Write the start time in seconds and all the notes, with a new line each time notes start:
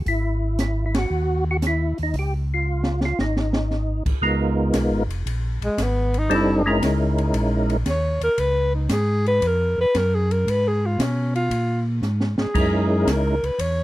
0.06 G#1 E4, kick, open hi-hat
0.59 E4, snare, closed hi-hat
0.86 E4
0.94 F#4, snare, ride
1.10 D#2
1.51 F#4
1.62 snare, closed hi-hat
1.67 E4
1.98 D#2, open hi-hat
2.03 D#4
2.13 C#2, kick, open hi-hat
2.19 G4
2.54 F4
2.84 snare
3.01 snare
3.05 F4
3.19 G#1 D#4, snare
3.37 snare
3.53 snare
3.71 snare
4.05 G#1, kick, crash
4.21 C#2 G#3 B3 D#4 F4 A#4, kick
4.73 B1, kick, snare, hi-hat pedal, ride
4.90 G#1
5.07 F1, ride
5.26 A#1, kick, ride
5.61 A#1 G#3, ride
5.78 G#1, kick, snare, hi-hat pedal, ride
5.83 B3
6.14 ride
6.18 D#4
6.29 F#1 G3 C4 D4 D#4 A4, kick, ride
6.34 E4
6.66 G#3 C#4 D#4 E4 A#4
6.81 C#2, kick, snare, hi-hat pedal, ride
7.18 ride
7.33 A#1, kick, ride
7.70 ride
7.86 D#2 C#5, kick, snare, hi-hat pedal, ride
8.21 D#2 A#4, ride
8.38 C#2 B4, kick, ride
8.75 D#4
8.89 G#2 G#4, kick, snare, hi-hat pedal, ride
9.26 B4, ride
9.42 F2, kick, ride
9.47 A#4
9.78 F2 B4
9.95 F#2 A#4, kick, snare, hi-hat pedal, ride
10.15 G#4
10.31 A#4, ride
10.47 G#2 B4, kick, ride
10.68 G#4
10.86 F4
10.99 B2 C#4, kick, snare, hi-hat pedal, ride
11.35 F4, ride
11.50 A#2, kick, ride
12.02 G#2, snare, hi-hat pedal
12.21 snare
12.38 G#2 G#4, snare
12.54 F#2 G#3 C#4 D#4 E4 A#4, kick, crash
13.07 C#2, kick, snare, hi-hat pedal, ride
13.11 A#4
13.43 C#2 B4, ride
13.58 E2 C#5, kick, ride